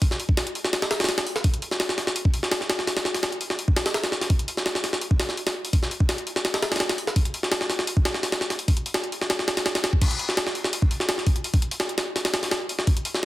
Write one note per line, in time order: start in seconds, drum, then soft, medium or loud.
0.02 kick loud
0.02 open hi-hat medium
0.11 snare soft
0.20 open hi-hat medium
0.29 kick medium
0.37 snare loud
0.37 open hi-hat medium
0.47 closed hi-hat soft
0.55 open hi-hat medium
0.65 snare soft
0.73 snare loud
0.73 open hi-hat medium
0.82 snare loud
0.82 open hi-hat medium
0.91 snare loud
0.91 open hi-hat medium
1.00 snare medium
1.00 open hi-hat medium
1.04 snare medium
1.04 open hi-hat medium
1.09 snare loud
1.09 open hi-hat medium
1.18 snare loud
1.18 open hi-hat medium
1.27 open hi-hat medium
1.36 snare medium
1.44 kick loud
1.44 open hi-hat medium
1.54 closed hi-hat soft
1.62 open hi-hat medium
1.71 snare soft
1.80 snare loud
1.80 open hi-hat medium
1.89 snare medium
1.98 snare medium
1.98 open hi-hat medium
2.07 snare medium
2.16 open hi-hat medium
2.25 kick loud
2.34 open hi-hat medium
2.43 snare soft
2.52 snare loud
2.52 open hi-hat medium
2.61 snare soft
2.70 snare loud
2.70 open hi-hat medium
2.79 snare soft
2.87 snare soft
2.87 open hi-hat medium
2.97 snare loud
2.97 open hi-hat medium
3.05 snare medium
3.14 snare soft
3.14 open hi-hat medium
3.23 snare loud
3.23 open hi-hat medium
3.32 closed hi-hat soft
3.41 open hi-hat medium
3.50 snare soft
3.59 open hi-hat medium
3.68 kick medium
3.76 snare loud
3.76 open hi-hat medium
3.86 snare loud
3.86 open hi-hat medium
3.94 snare loud
3.94 open hi-hat medium
4.04 snare loud
4.04 open hi-hat medium
4.12 snare medium
4.21 snare soft
4.21 open hi-hat medium
4.30 kick loud
4.30 open hi-hat medium
4.39 closed hi-hat soft
4.48 open hi-hat medium
4.57 snare soft
4.66 snare loud
4.66 open hi-hat medium
4.75 snare medium
4.84 snare soft
4.84 open hi-hat medium
4.93 snare medium
5.01 open hi-hat medium
5.11 kick medium
5.20 snare loud
5.20 open hi-hat medium
5.29 snare soft
5.37 open hi-hat medium
5.47 snare loud
5.47 open hi-hat medium
5.65 open hi-hat medium
5.73 kick loud
5.73 open hi-hat medium
5.83 snare soft
5.91 open hi-hat medium
6.00 kick loud
6.09 snare loud
6.09 open hi-hat medium
6.18 closed hi-hat soft
6.27 open hi-hat medium
6.36 snare soft
6.45 snare loud
6.45 open hi-hat medium
6.54 snare loud
6.54 open hi-hat medium
6.62 snare loud
6.62 open hi-hat medium
6.72 snare medium
6.72 open hi-hat medium
6.76 snare medium
6.76 open hi-hat medium
6.80 snare loud
6.80 open hi-hat medium
6.89 snare loud
6.89 open hi-hat medium
6.98 open hi-hat medium
7.07 snare medium
7.16 kick loud
7.16 open hi-hat medium
7.25 closed hi-hat soft
7.34 open hi-hat medium
7.43 snare soft
7.52 snare loud
7.52 open hi-hat medium
7.61 snare medium
7.70 snare soft
7.70 open hi-hat medium
7.79 snare medium
7.87 open hi-hat medium
7.97 kick medium
8.05 snare loud
8.05 open hi-hat medium
8.14 snare medium
8.23 snare soft
8.23 open hi-hat medium
8.32 snare loud
8.32 open hi-hat medium
8.41 snare medium
8.50 snare soft
8.50 open hi-hat medium
8.59 open hi-hat medium
8.68 kick loud
8.68 open hi-hat medium
8.77 closed hi-hat soft
8.86 open hi-hat medium
8.94 snare loud
8.94 open hi-hat medium
9.04 closed hi-hat soft
9.12 open hi-hat medium
9.21 snare soft
9.30 snare loud
9.30 open hi-hat medium
9.39 snare medium
9.48 snare loud
9.48 open hi-hat medium
9.57 snare loud
9.57 open hi-hat medium
9.66 snare loud
9.66 open hi-hat medium
9.75 snare loud
9.75 open hi-hat medium
9.84 snare loud
9.84 open hi-hat medium
9.93 kick medium
10.02 kick loud
10.02 open hi-hat medium
10.02 crash medium
10.11 closed hi-hat soft
10.19 open hi-hat medium
10.29 snare soft
10.37 snare loud
10.37 open hi-hat medium
10.47 snare medium
10.55 open hi-hat medium
10.64 snare medium
10.73 open hi-hat medium
10.82 kick medium
10.91 open hi-hat medium
11.00 snare soft
11.09 snare loud
11.09 open hi-hat medium
11.18 snare soft
11.27 kick loud
11.27 open hi-hat medium
11.36 closed hi-hat soft
11.44 open hi-hat medium
11.54 kick loud
11.54 open hi-hat medium
11.62 closed hi-hat soft
11.71 open hi-hat medium
11.80 snare loud
11.80 open hi-hat medium
11.89 closed hi-hat soft
11.98 snare loud
11.98 open hi-hat medium
12.16 snare soft
12.16 open hi-hat medium
12.25 snare loud
12.25 open hi-hat medium
12.34 snare loud
12.34 open hi-hat medium
12.43 snare soft
12.43 open hi-hat medium
12.51 snare loud
12.51 open hi-hat medium
12.69 open hi-hat medium
12.79 snare medium
12.87 kick loud
12.87 open hi-hat medium
12.97 closed hi-hat soft
13.05 open hi-hat medium
13.14 snare soft